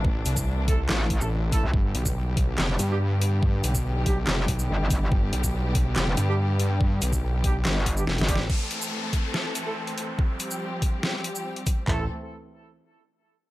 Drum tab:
CC |------------------------------------------------|------------------------------------------------|------------------------------------------------|------------------------------------------------|
HH |------x-----------x-----------x-----------x-----|------x-----------x-----------x-----------x-----|------x-----------x-----------x-----------x-----|------x-----------x-----------x-----------x-----|
SH |------x--x-----------------------x--------x-----|---------x--------------------x-----------------|------x--x-----------------------x--------x-----|---------x--------------------x-----------------|
CP |------------------------x-----------------------|------------------------x-----------------------|------------------------x-----------------------|------------------------x-----------------------|
SD |------------------------o-----------------------|------------------------o-----------------------|------------------------o-----------------------|------------------------o-----------------------|
FT |------------------------------------------------|------------------------------------------------|------------------------------------------------|------------------------------------------------|
BD |o--------o--------o-----------o-----------o-----|o--------o--------o-----------------------------|o--------o--------o-----------o-----------o-----|o--------o--------o-----------------------------|

CC |------------------------------------------------|x-----------------------------------------------|------------------------------------------------|------------------------------------------------|
HH |------x-----------x-----------x--------x--x-----|------x-----------x-----------x--------x--x-----|------x-----------x-----------x--------x--x-----|------------------------------------------------|
SH |------x--x-----------------------x--------x-----|---------x--------------------x-----------------|------x--x-----------------------x--------x-----|------------------------------------------------|
CP |------------------------x-----------------------|------------------------------------------------|------------------------------------------------|x-----------------------------------------------|
SD |------------------------o-----------o---o---o---|------------------------o-----------------------|------------------------o-----------------------|------------------------------------------------|
FT |------------------------------------------------|------------------------------------------------|------------------------------------------------|o-----------------------------------------------|
BD |o--------o--------o-----------o-----------o-----|o-----------------o-----------------------------|o-----------------o-----------------------o-----|o-----------------------------------------------|